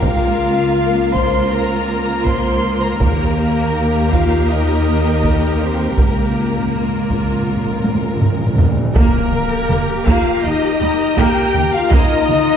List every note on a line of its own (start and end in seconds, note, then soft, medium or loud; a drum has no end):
0.00 2.96 C#2 medium
0.00 2.97 C#2 medium
0.00 5.94 A#3 medium
0.00 1.12 F4 loud
0.00 3.01 F4 medium
0.00 2.96 A#4 medium
0.00 taiko medium
0.04 1.13 F5 medium
1.13 1.50 C5 loud
1.13 1.52 C6 medium
1.13 taiko medium
1.51 2.26 A#4 medium
1.51 2.26 A#5 medium
2.26 2.82 C5 medium
2.26 2.82 C6 medium
2.26 taiko medium
2.81 3.00 A#4 medium
2.81 3.01 A#5 medium
2.99 5.94 D#2 medium
2.99 4.10 A#3 medium
2.99 6.72 G4 medium
2.99 8.71 A#4 medium
2.99 4.10 A#4 medium
2.99 taiko medium
4.12 4.49 F4 medium
4.12 4.50 F5 medium
4.12 taiko medium
4.49 5.61 D#4 medium
4.49 5.61 D#5 medium
5.23 taiko medium
5.61 5.98 C4 medium
5.61 5.99 C5 medium
5.98 8.71 C#2 medium
5.98 8.72 C#2 medium
5.98 8.71 A#3 medium
5.98 8.22 A#3 medium
5.98 8.17 A#4 soft
5.98 taiko medium
6.13 6.20 A#2 soft
6.21 6.27 A#2 soft
6.29 6.35 A#2 soft
6.36 6.42 A#2 soft
6.43 6.49 A#2 soft
6.50 6.57 A#2 soft
6.58 6.65 A#2 soft
6.66 6.72 A#2 soft
6.73 6.80 A#2 soft
6.73 8.76 F4 soft
6.81 6.87 A#2 soft
6.88 6.94 A#2 soft
6.96 7.02 A#2 soft
7.04 7.10 A#2 soft
7.10 7.18 A#2 soft
7.10 taiko medium
7.19 7.26 A#2 soft
7.27 7.33 A#2 soft
7.34 7.41 A#2 soft
7.42 7.48 A#2 soft
7.49 7.55 A#2 soft
7.56 7.63 A#2 soft
7.64 7.71 A#2 medium
7.72 7.78 A#2 medium
7.79 7.86 A#2 medium
7.84 7.93 A#2 medium
7.84 taiko high medium
7.94 8.01 A#2 medium
8.02 8.08 A#2 medium
8.09 8.15 A#2 medium
8.17 8.23 A#2 medium
8.21 8.31 A#2 medium
8.21 taiko low-mid medium
8.32 8.38 A#2 medium
8.39 8.45 A#2 medium
8.46 8.53 A#2 medium
8.55 8.61 A#2 medium
8.55 taiko low medium
8.62 8.68 A#2 medium
8.69 8.76 A#2 medium
8.77 8.84 A#2 medium
8.85 8.92 A#2 medium
8.95 9.03 D#2 medium
8.95 10.03 A#3 medium
8.95 9.30 A#3 medium
8.95 11.89 G4 medium
8.95 10.03 A#4 medium
8.95 12.57 A#4 medium
8.95 12.57 A#5 medium
8.95 taiko loud
8.95 impact medium
9.32 taiko mid soft
9.69 9.78 D#2 soft
9.69 9.78 D#2 medium
9.69 9.77 G3 soft
9.69 taiko mid soft
10.06 10.15 D#2 medium
10.06 10.41 A#3 medium
10.06 10.44 F4 medium
10.06 10.44 F5 medium
10.06 taiko medium
10.42 10.52 D#2 medium
10.42 10.51 A#3 medium
10.42 11.19 D#4 medium
10.42 11.16 D#5 medium
10.42 11.18 D#5 medium
10.80 10.88 D#2 medium
10.80 10.89 D#2 medium
10.80 10.89 G3 medium
11.17 11.25 D#2 medium
11.17 11.26 D#2 medium
11.17 11.52 A#3 medium
11.17 11.74 G4 medium
11.17 11.74 G5 medium
11.17 taiko medium
11.54 11.62 D#2 medium
11.54 11.63 D#2 medium
11.54 11.62 A#3 medium
11.54 taiko mid medium
11.73 11.93 F4 medium
11.73 11.92 F5 medium
11.73 11.93 F5 medium
11.91 11.99 C#2 medium
11.91 12.26 A#3 medium
11.91 12.57 D#4 loud
11.91 12.57 F4 medium
11.91 12.57 D#5 medium
11.91 taiko loud
12.29 taiko mid soft